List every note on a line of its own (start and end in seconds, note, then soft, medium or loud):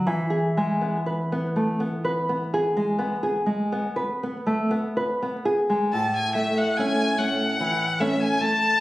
0.07 2.97 E3 medium
0.30 0.70 G#4 medium
0.57 0.96 G#3 medium
0.81 1.21 B3 medium
1.06 1.45 B4 medium
1.32 1.71 B3 medium
1.56 1.80 A3 medium
1.80 2.19 B3 medium
2.05 2.43 B4 medium
2.29 2.67 B3 medium
2.54 2.92 G#4 medium
2.77 3.15 G#3 medium
2.98 3.39 B3 medium
3.23 3.63 G#4 medium
3.46 3.87 G#3 medium
3.72 4.12 B3 medium
3.96 4.36 B4 medium
4.23 4.61 B3 medium
4.46 4.71 A3 medium
4.71 5.10 B3 medium
4.97 5.36 B4 medium
5.22 5.61 B3 medium
5.45 5.84 G#4 medium
5.70 5.92 G#3 medium
5.93 8.37 A2 medium
5.93 6.13 A5 medium
6.16 6.35 G#5 medium
6.35 6.77 A3 medium
6.35 6.59 E5 medium
6.58 6.78 F#5 medium
6.77 7.15 A3 soft
6.77 7.15 C#4 soft
6.77 7.20 G#5 medium
7.18 7.55 A3 soft
7.18 7.55 C#4 soft
7.18 8.02 F#5 medium
7.60 8.25 E3 medium
8.00 8.37 A3 medium
8.00 8.37 C#4 medium
8.00 8.22 E5 medium
8.21 8.43 G#5 medium
8.41 8.80 A3 soft
8.41 8.80 A5 loud